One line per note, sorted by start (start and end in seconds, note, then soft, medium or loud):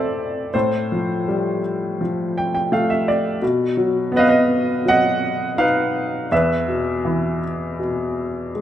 0.00 0.49 A2 soft
0.00 0.51 E3 soft
0.00 0.56 A3 soft
0.00 0.52 C4 soft
0.00 0.56 A4 medium
0.00 0.54 C5 medium
0.00 0.57 D5 medium
0.00 0.56 E5 medium
0.54 3.38 A2 soft
0.54 1.60 A4 soft
0.54 1.59 C5 medium
0.92 1.99 F3 soft
1.28 2.68 G3 soft
2.01 3.39 F3 soft
2.38 2.53 G5 medium
2.55 2.71 G5 medium
2.72 3.40 A3 soft
2.72 2.89 F5 medium
2.90 3.06 E5 medium
3.08 3.40 D5 medium
3.42 6.28 B2 medium
3.77 4.84 F#3 soft
4.12 5.54 B3 medium
4.16 4.21 B4 medium
4.16 4.22 D#5 medium
4.16 4.26 F5 medium
4.28 4.83 B4 medium
4.28 4.88 D#5 medium
4.85 6.27 F#3 soft
4.85 5.56 D#5 medium
4.85 5.62 F#5 medium
5.58 6.29 D#4 soft
5.58 6.28 B4 medium
5.58 6.34 F5 medium
6.32 8.61 E2 medium
6.32 7.41 B4 soft
6.32 7.40 E5 medium
6.68 7.78 B2 soft
7.05 8.52 E3 soft
7.80 8.61 B2 soft
8.55 8.61 G#3 soft